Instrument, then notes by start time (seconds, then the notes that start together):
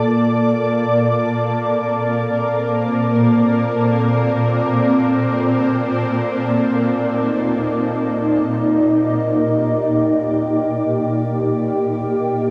ambient pad
Already playing: A#2 A#3 F4 A4 D5
1.50 C4
6.81 D#4
8.93 G4